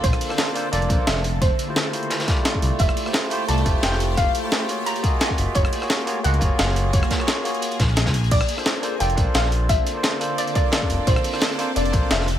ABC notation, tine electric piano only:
X:1
M:4/4
L:1/16
Q:"Swing 16ths" 1/4=174
K:Bblyd
V:1 name="Tine electric piano"
[B,DFAd]3 [B,DFAc]3 [B,DFAc] z [B,DFAd]2 [B,DFAc]4 z2 | z3 [A,EFGc]3 [A,EFGc]4 [A,EFGd]2 [A,EFGd]4- | [A,EFGd]3 [A,EFGc]3 [A,EFGc] z [A,EFGd]2 [A,EFGc]6- | [A,EFGc]3 [A,EFGc]3 [B,F_G_A_d]4 [B,FGA_e]2 [B,FGAe]4- |
[B,F_G_A_e]3 [B,FGA_d]3 [B,FGAd] z [B,FGAe]2 [B,FGAd]6- | [B,F_G_A_d]3 [B,FGAd]3 [B,FGAd]4 z6 | z3 [B,DFAc]3 [B,DFAc] z [B,DFAd]2 [B,DFAc]6- | [B,DFAc]3 [B,DFAc]3 [B,DFAc]4 [B,DFAd]2 [B,DFAd]4- |
[B,DFAd]3 [B,DFAc]3 [B,DFAc] z [B,DFAd]2 [B,DFAc]4 z2 |]